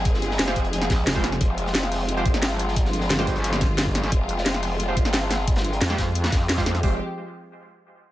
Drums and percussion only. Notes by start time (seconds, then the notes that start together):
0.05 kick, closed hi-hat
0.14 snare
0.22 closed hi-hat
0.31 snare
0.39 snare, closed hi-hat
0.48 snare
0.56 kick, closed hi-hat
0.64 closed hi-hat
0.73 closed hi-hat
0.82 snare, closed hi-hat
0.90 kick, snare, closed hi-hat
1.07 snare, closed hi-hat
1.15 kick
1.24 snare, closed hi-hat, open hi-hat
1.32 snare
1.41 kick, closed hi-hat
1.58 closed hi-hat
1.67 snare
1.75 snare, closed hi-hat
1.83 snare
1.92 snare, closed hi-hat, open hi-hat
2.08 closed hi-hat
2.26 kick, closed hi-hat
2.34 snare
2.42 snare, closed hi-hat
2.59 closed hi-hat, open hi-hat
2.68 snare
2.76 kick, closed hi-hat
2.85 snare
2.93 closed hi-hat
3.01 snare
3.10 snare, closed hi-hat
3.19 snare
3.27 kick, closed hi-hat
3.35 closed hi-hat
3.44 closed hi-hat
3.53 snare, closed hi-hat
3.61 kick, snare, closed hi-hat
3.78 snare, closed hi-hat
3.87 kick
3.95 snare, closed hi-hat, open hi-hat
4.03 snare
4.12 kick, closed hi-hat
4.29 closed hi-hat
4.38 snare
4.46 snare, closed hi-hat
4.54 snare
4.63 closed hi-hat, open hi-hat
4.80 closed hi-hat
4.97 kick, closed hi-hat
5.05 snare
5.13 snare, closed hi-hat
5.30 snare, closed hi-hat, open hi-hat
5.48 kick, closed hi-hat
5.56 snare, closed hi-hat
5.65 closed hi-hat
5.73 closed hi-hat
5.81 snare, closed hi-hat
5.90 snare
5.98 kick, snare, closed hi-hat
6.15 closed hi-hat
6.24 snare, closed hi-hat
6.32 kick, snare, closed hi-hat
6.49 snare, closed hi-hat
6.58 kick, snare, closed hi-hat
6.66 snare, open hi-hat
6.74 snare, closed hi-hat
6.83 kick, open hi-hat